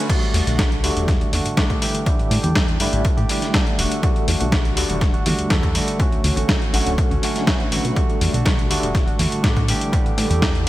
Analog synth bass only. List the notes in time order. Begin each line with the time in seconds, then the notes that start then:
0.34 E2
0.47 B1
0.83 D2
0.96 E1
1.33 E2
1.45 A2
1.57 A2
2.19 A2
2.31 A2
2.44 E2
2.80 G2
2.93 A1
3.18 A2
3.79 E1
4.28 E2
4.41 B1
4.77 D2
4.90 E1
5.26 E2
5.39 E2
5.50 E2
6.12 D2
6.24 D2
6.37 A1
6.73 A1
6.86 D1
7.11 D2
7.72 A1
7.85 B2
8.21 E2
8.33 B1
8.70 D2
8.83 E1
9.19 E2
9.32 A2
9.44 A2
10.06 A2
10.17 A2
10.31 E2